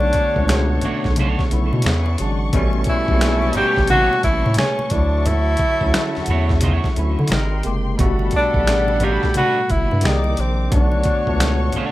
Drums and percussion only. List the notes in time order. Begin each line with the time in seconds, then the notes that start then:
0.00 muted conga
0.13 kick, closed hi-hat
0.36 kick
0.48 finger snap, snare, closed hi-hat, muted conga
0.81 closed hi-hat, low conga
1.04 kick, snare
1.16 closed hi-hat, muted conga, high conga
1.39 kick, snare
1.51 closed hi-hat
1.73 high conga
1.82 closed hi-hat, muted conga, high conga
1.86 finger snap, snare
2.06 muted conga
2.18 closed hi-hat
2.53 kick, closed hi-hat, muted conga, low conga
2.73 muted conga
2.84 kick, closed hi-hat
3.08 kick
3.21 finger snap, snare, closed hi-hat
3.42 muted conga
3.53 closed hi-hat, low conga
3.76 kick, snare
3.87 closed hi-hat, muted conga, high conga
4.13 muted conga
4.23 kick, closed hi-hat
4.46 high conga
4.54 closed hi-hat, high conga
4.58 finger snap, snare
4.79 muted conga
4.90 kick, closed hi-hat
5.26 closed hi-hat, muted conga, low conga
5.57 kick, closed hi-hat
5.81 kick
5.94 finger snap, snare, closed hi-hat
6.15 snare
6.26 closed hi-hat, low conga
6.49 kick, snare
6.61 kick, closed hi-hat, muted conga, high conga
6.84 kick, snare, muted conga
6.96 closed hi-hat
7.19 high conga
7.28 closed hi-hat, muted conga, high conga
7.32 finger snap, snare
7.63 closed hi-hat
7.99 kick, closed hi-hat, muted conga, low conga
8.19 muted conga
8.31 kick, closed hi-hat
8.54 kick
8.67 finger snap, snare, closed hi-hat
8.88 muted conga
9.00 closed hi-hat, low conga
9.23 kick, snare
9.34 closed hi-hat, muted conga, high conga
9.70 kick, closed hi-hat
9.91 high conga
10.01 closed hi-hat, muted conga, high conga
10.05 finger snap, snare
10.24 muted conga
10.37 closed hi-hat
10.72 kick, closed hi-hat, muted conga, low conga
10.92 muted conga
11.03 kick, closed hi-hat
11.27 kick
11.40 finger snap, snare, closed hi-hat
11.72 closed hi-hat, low conga